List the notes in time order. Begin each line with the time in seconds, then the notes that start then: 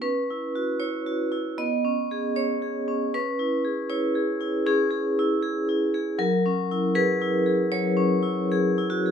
0.02 C#4 B4
0.30 E4
0.56 F#4
0.80 E4 C#5
1.07 F#4
1.32 E4
1.58 B3 D#5
1.85 C#4
2.11 G#4
2.36 C#4 C#5
2.62 G#4
2.88 C#4
3.14 C#4 B4
3.39 E4
3.65 G#4
3.90 E4 C#5
4.15 G#4
4.41 E4
4.66 C#4 G#4
4.91 G#4
5.19 E4
5.42 G#4
5.69 E4
5.94 G#4
6.19 F#3 A#4
6.46 C#4
6.71 E4
6.95 G#4 B4
7.22 E4
7.46 G#4
7.72 F#3 C#5
7.97 C#4
8.23 E4
8.52 G#4
8.78 E4
8.90 F#4
9.06 G#4